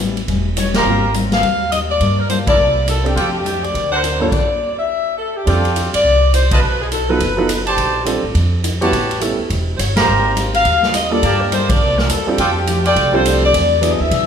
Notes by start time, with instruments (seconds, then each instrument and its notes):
Already playing: upright bass A1
0.00 steel-string acoustic guitar A2 G3 B3 C#4
0.17 ride
0.27 upright bass E1, steel-string acoustic guitar A2 G3 B3 C#4, kick, ride
0.56 steel-string acoustic guitar A2 G3 B3 C#4, saxophone section C#5, hi-hat pedal, ride
0.74 trumpet section G4 C5 F5 A#5, saxophone section A#4, snare, ride
0.84 upright bass G#1, steel-string acoustic guitar G#2 G3 C4 F4, grand piano A#3 C4 F4 G4
1.13 steel-string acoustic guitar G#2 G3 C4 F4, hi-hat pedal, ride
1.32 saxophone section F5, snare, ride
1.42 upright bass D#2, steel-string acoustic guitar G#2 G3 C4 F4, kick, ride
1.72 steel-string acoustic guitar G#2 G3 C4 F4, saxophone section D#5, hi-hat pedal, ride
1.91 saxophone section D5
1.99 upright bass G2, steel-string acoustic guitar G3 A#3 F4 A4, kick, ride
2.19 saxophone section A#4
2.29 steel-string acoustic guitar G3 A#3 F4 A4, saxophone section C5, hi-hat pedal, ride
2.47 trumpet section E4 A#4 D5 A5, saxophone section D5, kick, ride
2.57 upright bass C2, steel-string acoustic guitar C3 A#3 E4 A4
2.86 steel-string acoustic guitar C3 A#3 E4 A4, saxophone section A4, hi-hat pedal, ride
3.04 grand piano C4 D4 G4 A4, saxophone section G4, ride
3.15 upright bass F2, steel-string acoustic guitar F3 A3 D4 G4, trumpet section F4 A4 D5 G5, kick, ride
3.44 steel-string acoustic guitar F3 A3 D4 G4, hi-hat pedal, ride
3.64 saxophone section D5, ride
3.73 upright bass D2, steel-string acoustic guitar D3 C4 F#4 A#4, kick, ride
3.91 trumpet section D4 A#4 C5 F#5, saxophone section C5
4.03 steel-string acoustic guitar D3 C4 F#4 A#4, hi-hat pedal, ride
4.20 grand piano G2 A#3 D4 F4 A4, saxophone section D5
4.32 kick, crash
4.79 saxophone section E5
5.18 saxophone section A4
5.36 saxophone section G4
5.45 upright bass F2, grand piano G3 C4 D4 F4 A4, trumpet section F4 A4 D5 G5, kick, ride
5.65 ride
5.76 hi-hat pedal, ride
5.94 upright bass F#2, saxophone section D5, ride
6.04 upright bass C2, kick
6.34 saxophone section C5, hi-hat pedal, ride
6.51 trumpet section F4 B4 D#5 A5, saxophone section B4, kick, ride
6.62 upright bass B1
6.82 saxophone section G#4
6.92 saxophone section A4, hi-hat pedal, ride
7.09 grand piano F#3 B3 D#4 F4 A4, saxophone section B4
7.20 upright bass F#1, kick, ride
7.37 grand piano F#3 B3 D#4 F4 A4
7.49 hi-hat pedal, ride
7.66 trumpet section G4 C5 D5 A5, ride
7.77 upright bass A#1, kick, ride
8.05 grand piano G3 C4 D4 F4 A4, hi-hat pedal, ride
8.23 upright bass A1
8.34 upright bass F2, kick, ride
8.64 hi-hat pedal, ride
8.81 grand piano G3 B3 C#4 E4 F#4, trumpet section G4 B4 C#5 A5, ride
8.92 upright bass A1, kick, ride
9.11 ride
9.20 grand piano G3 B3 C#4 E4 A4, hi-hat pedal, ride
9.39 muted upright bass stroke
9.50 upright bass E1, kick, ride
9.77 upright bass G1, saxophone section C5 C#5, hi-hat pedal, ride
9.96 trumpet section G4 C5 F5 A#5, saxophone section A#4, snare, ride
10.07 upright bass G#1, steel-string acoustic guitar G#3 C4 F4 G4
10.35 steel-string acoustic guitar G#3 C4 F4 G4, hi-hat pedal, ride
10.54 saxophone section F5, ride
10.65 upright bass D#2, steel-string acoustic guitar G#3 C4 F4 G4, kick, ride
10.83 snare
10.94 steel-string acoustic guitar G#3 C4 F4 G4, saxophone section D#5, hi-hat pedal, ride
11.11 grand piano G3 A#3 D4 F4 A4, saxophone section D5
11.23 upright bass G2, steel-string acoustic guitar G3 A#3 F4 A4, trumpet section G4 A#4 F5 A5, kick, ride
11.41 saxophone section A#4
11.52 steel-string acoustic guitar G3 A#3 F4 A4, saxophone section C5, hi-hat pedal, ride
11.69 saxophone section D5, kick, ride
11.80 upright bass C2, steel-string acoustic guitar C3 A#3 E4 A4
11.98 saxophone section A#4, snare
12.09 upright bass E2, steel-string acoustic guitar C3 A#3 E4 A4, saxophone section A4, hi-hat pedal, ride
12.27 grand piano G3 C4 D4 F4 A4, saxophone section G4
12.38 upright bass F2, steel-string acoustic guitar F3 A3 G4, trumpet section F4 A4 D5 G5, kick, ride
12.67 steel-string acoustic guitar F3 A3 D4 G4, hi-hat pedal, ride
12.85 trumpet section F4 A4 D5 G5, saxophone section D5, ride
12.95 upright bass C2, steel-string acoustic guitar F3 A3 D4 G4, kick, ride
13.13 grand piano G3 C4 D4 F4 A4, saxophone section C5
13.24 steel-string acoustic guitar F3 A3 D4 G4, hi-hat pedal, ride
13.44 saxophone section D5
13.52 upright bass E2, steel-string acoustic guitar E3 B3 D4 G#4, kick, ride
13.81 steel-string acoustic guitar E3 B3 D4 G#4, grand piano F#3 B3 D4 E4 G#4, hi-hat pedal, ride
13.91 saxophone section D#5
14.00 upright bass D#2, saxophone section E5
14.11 upright bass B1, steel-string acoustic guitar E3 B3 D4 G#4, kick, ride